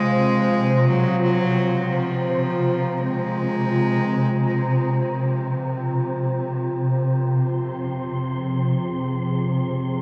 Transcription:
Already playing: C3 G#3 C4 F4 C5 F5 G#5
0.10 A#5
0.87 F#3
1.92 F3
2.99 G#3
7.29 F3 C4 C6
7.59 G#4

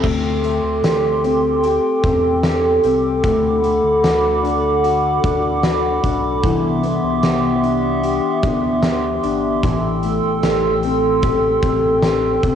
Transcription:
Already playing: C4 G4
0.03 D2 A3 A4 G5 C6 D6, kick, crash
0.44 A3, closed hi-hat
0.63 D2
0.83 D2 G4, snare, closed hi-hat, tambourine
1.24 C4, closed hi-hat
1.64 G4, closed hi-hat
2.04 E2 C4, kick, closed hi-hat
2.43 G4, snare, closed hi-hat, tambourine
2.84 C2 C4, closed hi-hat
3.24 D2 A3 F#5 B5, kick, closed hi-hat
3.64 A3, closed hi-hat
3.84 D2
4.04 D2 F#4, snare, closed hi-hat, tambourine
4.43 D4, closed hi-hat
4.83 F#4, closed hi-hat
5.23 D2 D4, kick, closed hi-hat
5.63 F#4, snare, closed hi-hat, tambourine
6.03 B1 D4, kick, closed hi-hat
6.43 C2 E3 B3 E5 C6, kick, closed hi-hat
6.84 B3, closed hi-hat
7.03 C2
7.23 C2 G4, snare, closed hi-hat, tambourine
7.63 D4, closed hi-hat
8.03 G4, closed hi-hat
8.43 D2 D4, kick, closed hi-hat
8.82 G4, snare, closed hi-hat, tambourine
9.23 G1 D4, closed hi-hat
9.63 A1 E3 A4 G5 E6, kick, closed hi-hat
10.03 A3, closed hi-hat
10.23 A1
10.43 A1 G4, snare, closed hi-hat, tambourine
10.83 C4, closed hi-hat
11.23 G4, kick, closed hi-hat
11.63 A1 C4, kick, closed hi-hat
12.03 G4, snare, closed hi-hat, tambourine
12.43 C2 C4, kick, closed hi-hat

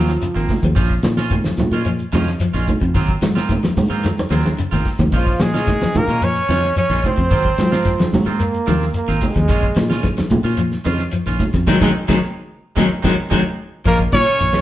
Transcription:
Already playing: D#2 F3 F#3 A#3 C4 F4
0.08 snare, closed hi-hat, shekere
0.22 C#3, closed hi-hat, shekere
0.35 G#1 D#3 A#3 C4, muted clean electric guitar stroke, shekere
0.49 kick, snare, open hi-hat, low conga, shekere
0.63 D#2 F3, kick, closed hi-hat, high conga, shekere
0.75 A#1 F3 C#4 F4, muted clean electric guitar stroke, kick, closed hi-hat, shekere
0.89 kick, closed hi-hat, shekere
1.03 A#2 F3, snare, closed hi-hat, high conga, shekere
1.17 C#4 F4, snare, shekere
1.30 D#3, kick, closed hi-hat, low conga, shekere
1.44 F3, snare, closed hi-hat, high conga, shekere
1.57 A#2, snare, closed hi-hat, high conga, low conga, shekere
1.71 A#2 D#3 G#3 C#4 F4, closed hi-hat, shekere
1.85 F3, closed hi-hat, shekere
1.99 shekere
2.12 F2 C#3 F3 G#3 C#4 F4, closed hi-hat, high conga, low conga, shekere
2.27 snare, shekere
2.40 F3, closed hi-hat, shekere
2.53 A#1 D#3 G#3 C#4 F4, snare, closed hi-hat, shekere
2.67 kick, closed hi-hat, high conga, low conga, shekere
2.81 F2 C#3, kick, closed hi-hat, shekere
2.94 G#1 D#3 F#3 A#3 C4 F4, kick, closed hi-hat, shekere
3.09 kick, shekere
3.22 G#2 F#3, snare, closed hi-hat, high conga, shekere
3.35 A#3 C4 F4, snare, shekere
3.49 D#3, kick, snare, closed hi-hat, low conga, shekere
3.63 F3, snare, high conga, shekere
3.77 G#2, open hi-hat, high conga, low conga, shekere
3.90 G#2 D#3 A#3 C4 F4, closed hi-hat, shekere
4.04 D#3, snare, closed hi-hat, high conga, shekere
4.18 snare, closed hi-hat, high conga, shekere
4.30 D#2 F3 F#3 A#3 C4 F4, closed hi-hat, high conga, shekere
4.45 snare, closed hi-hat, high conga, shekere
4.59 C#3, closed hi-hat, shekere
4.71 G#1 D#3 A#3 C4 F4, snare, low conga, shekere
4.85 kick, snare, open hi-hat, shekere
4.99 D#2 F3, kick, snare, closed hi-hat, low conga, shekere
5.12 A#1 D#3 F3 G#3 C#4 F4, kick, closed hi-hat, shekere
5.26 kick, closed hi-hat, shekere
5.39 A#2 F3 G#4, snare, closed hi-hat, high conga, shekere
5.44 G#3
5.54 G#3 C#4 F4, snare, shekere
5.66 D#3, kick, snare, closed hi-hat, low conga, shekere
5.81 F3, snare, closed hi-hat, high conga, shekere
5.94 A#2 A#3 A#4, closed hi-hat, high conga, low conga, shekere
6.08 A#2 D#3 G#3 C#4, muted clean electric guitar stroke, closed hi-hat, shekere
6.21 F3 C#4 C#5, closed hi-hat, shekere
6.36 shekere
6.48 F2 C#3 F3 G#3 C#4 F4, snare, closed hi-hat, high conga, shekere
6.63 snare, shekere
6.76 F3 C#4 C#5, closed hi-hat, shekere
6.90 A#1 D#3 G#3 C#4 F4, snare, closed hi-hat, shekere
7.04 C4 C5, kick, closed hi-hat, low conga, shekere
7.17 F2 C#3, kick, closed hi-hat, shekere
7.30 G#1 D#3 F#3 A#3 C4 F4, kick, closed hi-hat, shekere
7.45 kick, shekere
7.58 G#2 F3 F#3, snare, closed hi-hat, high conga, shekere
7.72 A#3 C4 F4, snare, shekere
7.85 D#3, kick, closed hi-hat, shekere
7.99 F3, snare, high conga, shekere
8.13 G#2 F#3, snare, open hi-hat, high conga, low conga, shekere
8.26 G#2 D#3 A#3 C4 F4, closed hi-hat, shekere
8.40 A#3, muted clean electric guitar stroke, closed hi-hat, shekere
8.54 closed hi-hat, shekere
8.67 D#2 F3 A#3 C4 F4, snare, closed hi-hat, high conga, low conga, shekere
8.81 snare, closed hi-hat, shekere
8.94 A#3, closed hi-hat, shekere
9.08 G#1 D#3 A#3 C4 F4, snare, shekere
9.21 G#3, kick, open hi-hat, low conga, shekere
9.35 D#2 F3, kick, snare, closed hi-hat, high conga, shekere
9.48 A#1 D#3 G#3 C#4 F4, kick, snare, closed hi-hat, shekere
9.62 kick, closed hi-hat, shekere
9.75 A#2 F3, snare, closed hi-hat, high conga, shekere
9.90 C#4 F4, snare, shekere
10.03 D#3, kick, snare, closed hi-hat, high conga, shekere
10.17 F3, snare, closed hi-hat, high conga, shekere
10.30 A#2, closed hi-hat, high conga, low conga, shekere
10.44 A#2 D#3 C#4 F4, closed hi-hat, shekere
10.57 F3, closed hi-hat, shekere
10.72 snare, shekere
10.85 F2 C#3 G#3 C#4 F4, closed hi-hat, high conga, shekere
10.99 snare, shekere
11.11 F3, closed hi-hat, shekere
11.26 A#1 D#3 C#4 F4, snare, closed hi-hat, shekere
11.39 kick, closed hi-hat, high conga, low conga, shekere
11.53 F2 C#3, kick, snare, closed hi-hat, high conga, shekere
11.67 G#1 D#3 F#3 G#3 C4 D#4, kick, snare, low conga, shekere
11.81 G#1 D#3 F#3 G#3 C4 D#4, kick, snare, low conga, shekere
12.08 G#1 D#3 F#3 G#3 C4 D#4, kick, snare, low conga, shekere
12.76 G#1 D#3 F#3 G#3 C4 D#4, kick, snare, low conga, shekere
13.02 G#1 D#3 F#3 G#3 C4 D#4, kick, snare, low conga, shekere
13.30 G#1 D#3 F#3 G#3 C4 D#4, kick, snare, low conga, shekere
13.85 A#1 F3 G#3 A#3 C#4 F4 A#4, kick, closed hi-hat, shekere
13.99 kick, closed hi-hat, shekere
14.12 A#2 C#3 C#4 C#5, kick, snare, closed hi-hat, high conga, shekere
14.26 C#4 F4, muted clean electric guitar stroke, closed hi-hat, shekere
14.39 A#1 D#3, closed hi-hat, shekere
14.53 G#3 C#4 F4, snare, high conga, shekere

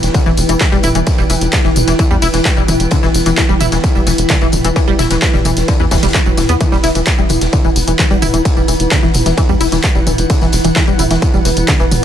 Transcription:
Already playing: E3 E4 B4 G5
0.03 E1, snare, closed hi-hat, tambourine
0.14 D3, kick, closed hi-hat, tambourine
0.26 E1 E3, tambourine
0.37 E1, closed hi-hat, open hi-hat, tambourine
0.49 E1 E3, closed hi-hat, tambourine
0.60 E3, kick, snare, clap, closed hi-hat, tambourine
0.72 E1 G3, closed hi-hat, tambourine
0.83 E1 E4, closed hi-hat, mid tom, open hi-hat, tambourine
0.95 E1 E3, closed hi-hat, tambourine
1.07 kick, closed hi-hat, tambourine
1.18 E1 G3, tambourine
1.30 E1 E3, closed hi-hat, open hi-hat, tambourine
1.41 E1, closed hi-hat, tambourine
1.53 D3, kick, snare, clap, closed hi-hat, tambourine
1.64 E1 E3, snare, tambourine
1.76 E1, closed hi-hat, mid tom, open hi-hat, tambourine
1.87 E1 E3, snare, closed hi-hat, tambourine
1.99 E3, kick, closed hi-hat, tambourine
2.11 E2 G3, tambourine
2.22 E1 E4, open hi-hat, tambourine
2.33 E1 E3, snare, closed hi-hat, tambourine
2.45 kick, snare, clap, closed hi-hat, tambourine
2.57 E1 G3, tambourine
2.68 E1 E3, closed hi-hat, mid tom, open hi-hat, tambourine
2.80 E1, closed hi-hat, tambourine
2.91 D3, kick, closed hi-hat, tambourine
3.03 E1 E3, snare, tambourine
3.14 E1, snare, closed hi-hat, open hi-hat, tambourine
3.26 E1 E3, closed hi-hat, tambourine
3.37 E3, kick, snare, clap, closed hi-hat, tambourine
3.49 E1 G3, tambourine
3.60 E1 E4, closed hi-hat, mid tom, open hi-hat, tambourine
3.72 E1 E3, snare, closed hi-hat, tambourine
3.84 kick, closed hi-hat, tambourine
3.95 E1 G3, tambourine
4.07 E1 E3, closed hi-hat, open hi-hat, tambourine
4.18 E1, closed hi-hat, tambourine
4.29 D3, kick, snare, clap, closed hi-hat, tambourine
4.41 E1 E3, closed hi-hat, tambourine
4.52 E1, closed hi-hat, mid tom, open hi-hat, tambourine
4.64 E1 E3, closed hi-hat, tambourine
4.76 E3, kick, closed hi-hat, tambourine
4.88 E1 G3, tambourine
4.99 E1 E4, snare, closed hi-hat, mid tom, open hi-hat, tambourine
5.10 E1 E3, snare, closed hi-hat, tambourine
5.22 kick, snare, clap, closed hi-hat, tambourine
5.34 E1 G3, snare, mid tom, tambourine
5.45 E1 E3 F#5, closed hi-hat, mid tom, open hi-hat, tambourine
5.57 E1, snare, closed hi-hat, tambourine
5.68 D3, kick, closed hi-hat, tambourine
5.80 E2 E3, tambourine
5.91 E1 E3, kick, snare, closed hi-hat, open hi-hat, tambourine
5.96 snare, closed hi-hat
6.02 E1 G3, snare, closed hi-hat, tambourine
6.09 snare, closed hi-hat
6.14 E3, kick, snare, clap, closed hi-hat, tambourine
6.26 E1 F#3, tambourine
6.37 E1 E3, snare, closed hi-hat, mid tom, open hi-hat, tambourine
6.49 E2 B3, closed hi-hat, tambourine
6.61 E3, kick, closed hi-hat, tambourine
6.72 E1 G3, snare, tambourine
6.83 E1 E4, snare, closed hi-hat, open hi-hat, tambourine
6.95 E1 E3, closed hi-hat, tambourine
7.06 kick, snare, clap, closed hi-hat, tambourine
7.18 E1 G3, tambourine
7.29 E1 E3, closed hi-hat, mid tom, open hi-hat, tambourine
7.41 E1, snare, closed hi-hat, tambourine
7.53 D3, kick, closed hi-hat, tambourine
7.64 E1 E3, tambourine
7.76 E1, closed hi-hat, open hi-hat, tambourine
7.88 E1 E3, closed hi-hat, tambourine
7.98 E3, kick, snare, clap, closed hi-hat, tambourine
8.11 E1 G3, closed hi-hat, tambourine
8.22 E1 E4, closed hi-hat, mid tom, open hi-hat, tambourine
8.34 E1 E3, closed hi-hat, tambourine
8.45 kick, closed hi-hat, tambourine
8.57 E1 G3, tambourine
8.68 E1 E3, closed hi-hat, open hi-hat, tambourine
8.80 E1, closed hi-hat, tambourine
8.91 D3, kick, snare, clap, closed hi-hat, tambourine
9.03 E1 E3, snare, tambourine
9.14 E1, closed hi-hat, mid tom, open hi-hat, tambourine
9.26 E1 E3, snare, closed hi-hat, tambourine
9.38 E3, kick, closed hi-hat, tambourine
9.49 E2 G3, tambourine
9.61 E1 E4, open hi-hat, tambourine
9.72 E1 E3, snare, closed hi-hat, tambourine
9.83 kick, snare, clap, closed hi-hat, tambourine
9.95 E1 G3, tambourine
10.07 E1 E3, closed hi-hat, mid tom, open hi-hat, tambourine
10.18 E1, closed hi-hat, tambourine
10.30 D3, kick, closed hi-hat, tambourine
10.41 E1 E3, snare, tambourine
10.52 E1, snare, closed hi-hat, open hi-hat, tambourine
10.64 E1 E3, closed hi-hat, tambourine
10.76 E3, kick, snare, clap, closed hi-hat, tambourine
10.88 E1 G3, tambourine
10.99 E1 E4, closed hi-hat, mid tom, open hi-hat, tambourine
11.11 E1 E3, snare, closed hi-hat, tambourine
11.22 kick, closed hi-hat, tambourine
11.34 E1 G3, tambourine
11.45 E1 E3, closed hi-hat, open hi-hat, tambourine
11.57 E1, closed hi-hat, tambourine
11.68 D3, kick, snare, clap, closed hi-hat, tambourine
11.80 E1 E3, closed hi-hat, tambourine
11.91 E1, closed hi-hat, mid tom, open hi-hat, tambourine

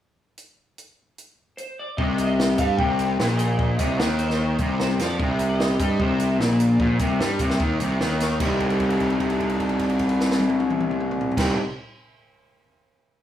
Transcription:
0.38 closed hi-hat
0.78 closed hi-hat
1.18 closed hi-hat
1.57 C5, closed hi-hat
1.79 D5
1.97 C2 C3 D#5, kick
2.18 closed hi-hat
2.27 D#5
2.40 snare
2.58 G2 G3 F5, kick, closed hi-hat
2.78 C2 C3 G5, kick
2.99 closed hi-hat
3.20 A#1 A#2, snare
3.37 D#5, closed hi-hat
3.59 kick
3.78 C2 C3 D#5, kick, closed hi-hat
4.00 D#2 D#3, snare
4.19 C5, closed hi-hat
4.30 snare
4.58 C2 C3, kick, closed hi-hat
4.80 C5, snare
4.99 F2 F3 D5, snare, closed hi-hat
5.20 C2 C3, kick
5.39 closed hi-hat
5.49 D#5
5.60 snare
5.79 G2 G3 D#5, kick, closed hi-hat
5.99 C2 C3 C5, kick
6.20 closed hi-hat
6.40 A#1 A#2, snare
6.60 closed hi-hat
6.80 A#1 A#2, kick
6.99 C2 C3, kick, closed hi-hat
7.20 G2 G3, snare
7.39 C2 C3, kick, closed hi-hat
7.50 snare
7.60 D#2 D#3, kick
7.80 C2 C3, closed hi-hat
8.01 D#2 D#3, snare
8.20 snare, closed hi-hat
8.40 C2 C3 G3 C4 D#4, kick, crash
8.44 G4
8.60 kick, crash
8.70 crash
8.80 kick, crash
8.90 crash
9.00 kick, crash
9.10 crash
9.20 kick, crash
9.30 crash
9.40 kick, crash
9.50 crash
9.60 kick, crash
9.69 crash
9.79 kick, crash
9.90 crash
9.99 kick, crash
10.09 crash
10.20 snare
10.31 snare
10.40 high tom
10.49 high tom
10.60 high tom
10.70 mid tom
10.81 mid tom
10.91 mid tom
11.00 mid tom
11.11 mid tom
11.21 floor tom
11.32 floor tom
11.37 C2 C3 G3 C4 D#4, kick, snare, crash
11.42 G4

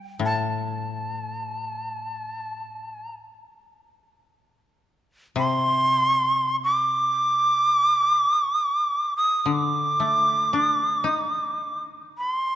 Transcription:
Already playing: G3
0.19 A2
0.25 A5
5.36 C3 C6
6.64 D6
9.17 D#6
9.39 D#6
9.46 D3
9.53 D6
10.00 A3
10.53 D4
11.04 D#4
12.18 B5
12.33 C6

